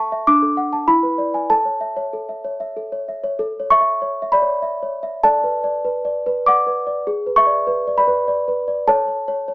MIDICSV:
0, 0, Header, 1, 2, 480
1, 0, Start_track
1, 0, Key_signature, 3, "major"
1, 0, Tempo, 622407
1, 1163, Time_signature, 3, 2, 24, 8
1, 3100, Tempo, 606673
1, 7470, End_track
2, 0, Start_track
2, 0, Title_t, "Celesta"
2, 0, Program_c, 0, 8
2, 0, Control_c, 0, 64, 127
2, 0, Note_on_c, 0, 69, 87
2, 0, Note_on_c, 0, 76, 54
2, 0, Note_on_c, 0, 81, 68
2, 0, Note_on_c, 0, 85, 127
2, 94, Note_off_c, 0, 76, 0
2, 94, Note_on_c, 0, 76, 66
2, 164, Note_off_c, 0, 81, 0
2, 199, Note_off_c, 0, 69, 0
2, 210, Note_on_c, 0, 86, 106
2, 211, Note_on_c, 0, 62, 77
2, 212, Note_off_c, 0, 76, 0
2, 212, Note_off_c, 0, 85, 0
2, 229, Control_c, 0, 64, 0
2, 327, Note_on_c, 0, 69, 56
2, 360, Control_c, 0, 64, 127
2, 441, Note_on_c, 0, 78, 66
2, 516, Note_off_c, 0, 69, 0
2, 560, Note_on_c, 0, 81, 67
2, 633, Note_off_c, 0, 78, 0
2, 668, Note_off_c, 0, 62, 0
2, 675, Note_on_c, 0, 83, 101
2, 676, Note_on_c, 0, 64, 75
2, 681, Note_off_c, 0, 81, 0
2, 681, Note_off_c, 0, 86, 0
2, 698, Control_c, 0, 64, 0
2, 794, Note_on_c, 0, 71, 47
2, 820, Control_c, 0, 64, 127
2, 911, Note_on_c, 0, 74, 55
2, 990, Note_off_c, 0, 71, 0
2, 1035, Note_on_c, 0, 80, 63
2, 1110, Note_off_c, 0, 74, 0
2, 1145, Note_off_c, 0, 64, 0
2, 1156, Note_on_c, 0, 69, 69
2, 1156, Note_on_c, 0, 81, 99
2, 1160, Note_off_c, 0, 80, 0
2, 1160, Note_off_c, 0, 83, 0
2, 1177, Control_c, 0, 64, 0
2, 1274, Note_on_c, 0, 73, 44
2, 1324, Control_c, 0, 64, 127
2, 1393, Note_on_c, 0, 76, 52
2, 1473, Note_off_c, 0, 73, 0
2, 1516, Note_on_c, 0, 73, 57
2, 1594, Note_off_c, 0, 76, 0
2, 1635, Note_off_c, 0, 69, 0
2, 1644, Note_on_c, 0, 69, 52
2, 1717, Note_off_c, 0, 73, 0
2, 1765, Note_on_c, 0, 76, 47
2, 1886, Note_on_c, 0, 73, 53
2, 1963, Note_off_c, 0, 76, 0
2, 2006, Note_on_c, 0, 76, 51
2, 2085, Note_off_c, 0, 73, 0
2, 2124, Note_off_c, 0, 69, 0
2, 2133, Note_on_c, 0, 69, 51
2, 2206, Note_off_c, 0, 76, 0
2, 2254, Note_on_c, 0, 73, 51
2, 2378, Note_on_c, 0, 76, 46
2, 2379, Note_off_c, 0, 81, 0
2, 2453, Note_off_c, 0, 73, 0
2, 2496, Note_on_c, 0, 73, 59
2, 2575, Note_off_c, 0, 76, 0
2, 2608, Note_off_c, 0, 69, 0
2, 2616, Note_on_c, 0, 69, 82
2, 2621, Note_off_c, 0, 73, 0
2, 2638, Control_c, 0, 64, 0
2, 2763, Control_c, 0, 64, 127
2, 2774, Note_on_c, 0, 73, 54
2, 2857, Note_on_c, 0, 85, 110
2, 2866, Note_on_c, 0, 76, 84
2, 2928, Note_off_c, 0, 76, 0
2, 2937, Note_on_c, 0, 76, 60
2, 3032, Note_off_c, 0, 73, 0
2, 3098, Note_on_c, 0, 73, 56
2, 3194, Note_off_c, 0, 76, 0
2, 3259, Note_on_c, 0, 76, 60
2, 3337, Note_on_c, 0, 83, 98
2, 3338, Note_off_c, 0, 85, 0
2, 3347, Note_on_c, 0, 74, 80
2, 3356, Note_off_c, 0, 73, 0
2, 3418, Note_on_c, 0, 73, 52
2, 3516, Note_off_c, 0, 76, 0
2, 3578, Note_on_c, 0, 76, 58
2, 3674, Note_off_c, 0, 73, 0
2, 3738, Note_on_c, 0, 73, 51
2, 3834, Note_off_c, 0, 76, 0
2, 3899, Note_on_c, 0, 76, 56
2, 3994, Note_off_c, 0, 73, 0
2, 4022, Note_off_c, 0, 69, 0
2, 4030, Note_off_c, 0, 74, 0
2, 4057, Note_off_c, 0, 83, 0
2, 4058, Note_off_c, 0, 76, 0
2, 4061, Note_on_c, 0, 81, 117
2, 4062, Note_on_c, 0, 69, 69
2, 4069, Note_on_c, 0, 74, 85
2, 4073, Control_c, 0, 64, 0
2, 4199, Control_c, 0, 64, 127
2, 4222, Note_on_c, 0, 71, 53
2, 4371, Note_off_c, 0, 74, 0
2, 4380, Note_on_c, 0, 74, 62
2, 4477, Note_off_c, 0, 71, 0
2, 4545, Note_on_c, 0, 71, 57
2, 4639, Note_off_c, 0, 74, 0
2, 4705, Note_on_c, 0, 74, 58
2, 4807, Note_off_c, 0, 71, 0
2, 4875, Note_on_c, 0, 71, 65
2, 4971, Note_off_c, 0, 74, 0
2, 5034, Note_on_c, 0, 86, 100
2, 5037, Note_off_c, 0, 81, 0
2, 5037, Note_on_c, 0, 74, 52
2, 5047, Note_on_c, 0, 78, 77
2, 5134, Note_off_c, 0, 71, 0
2, 5194, Note_on_c, 0, 71, 51
2, 5293, Note_off_c, 0, 74, 0
2, 5352, Note_on_c, 0, 74, 53
2, 5449, Note_off_c, 0, 71, 0
2, 5483, Note_off_c, 0, 69, 0
2, 5487, Note_off_c, 0, 78, 0
2, 5511, Note_off_c, 0, 74, 0
2, 5513, Note_off_c, 0, 86, 0
2, 5513, Note_on_c, 0, 68, 72
2, 5527, Control_c, 0, 64, 0
2, 5655, Control_c, 0, 64, 127
2, 5667, Note_on_c, 0, 71, 50
2, 5745, Note_on_c, 0, 85, 119
2, 5756, Note_on_c, 0, 76, 88
2, 5826, Note_on_c, 0, 74, 60
2, 5922, Note_off_c, 0, 71, 0
2, 5988, Note_on_c, 0, 71, 65
2, 6082, Note_off_c, 0, 74, 0
2, 6150, Note_on_c, 0, 74, 58
2, 6199, Note_off_c, 0, 76, 0
2, 6225, Note_off_c, 0, 85, 0
2, 6230, Note_on_c, 0, 83, 96
2, 6231, Note_off_c, 0, 74, 0
2, 6240, Note_on_c, 0, 74, 63
2, 6244, Note_off_c, 0, 71, 0
2, 6309, Note_on_c, 0, 71, 69
2, 6460, Note_off_c, 0, 74, 0
2, 6469, Note_on_c, 0, 74, 60
2, 6562, Note_off_c, 0, 71, 0
2, 6630, Note_on_c, 0, 71, 62
2, 6722, Note_off_c, 0, 74, 0
2, 6784, Note_on_c, 0, 74, 53
2, 6882, Note_off_c, 0, 71, 0
2, 6912, Note_off_c, 0, 68, 0
2, 6941, Note_on_c, 0, 69, 80
2, 6942, Note_on_c, 0, 81, 117
2, 6944, Note_off_c, 0, 74, 0
2, 6945, Note_off_c, 0, 83, 0
2, 6949, Note_on_c, 0, 73, 105
2, 6958, Control_c, 0, 64, 0
2, 7091, Control_c, 0, 64, 127
2, 7093, Note_off_c, 0, 73, 0
2, 7103, Note_on_c, 0, 73, 55
2, 7253, Note_off_c, 0, 73, 0
2, 7262, Note_on_c, 0, 73, 66
2, 7411, Note_off_c, 0, 73, 0
2, 7421, Note_on_c, 0, 73, 62
2, 7470, Note_off_c, 0, 69, 0
2, 7470, Note_off_c, 0, 73, 0
2, 7470, Note_off_c, 0, 81, 0
2, 7470, End_track
0, 0, End_of_file